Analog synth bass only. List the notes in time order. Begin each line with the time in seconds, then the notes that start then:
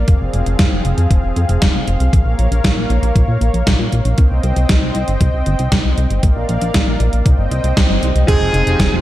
0.08 F1
0.21 F1
0.34 F1
0.46 F1
0.59 F1
0.72 F1
0.85 F1
0.98 F2
1.11 F1
1.23 F1
1.36 F2
1.49 F1
1.62 F1
1.75 F1
1.88 F1
2.00 C2
2.13 A#1
2.26 A#1
2.39 A#1
2.51 A#1
2.64 A#1
2.77 A#1
2.90 A#1
3.03 A#1
3.16 A#1
3.28 A#2
3.41 A#1
3.54 A#1
3.67 A#1
3.79 A#2
3.92 A#1
4.05 A#1
4.18 C2
4.31 C2
4.44 C2
4.57 C2
4.70 C2
4.82 C2
4.95 C2
5.08 G1
5.21 C2
5.34 C2
5.47 G1
5.59 C2
5.72 C2
5.85 C2
5.98 C2
6.10 G1
6.23 A#1
6.36 A#1
6.49 A#1
6.62 A#1
6.74 A#1
6.87 A#1
7.00 A#1
7.13 A#1
7.26 C2
7.38 G1
7.51 C2
7.64 C2
7.77 C2
7.90 G1
8.03 C2
8.15 C2
8.28 F1
8.41 F1
8.53 F1
8.67 F1
8.80 F1
8.92 F1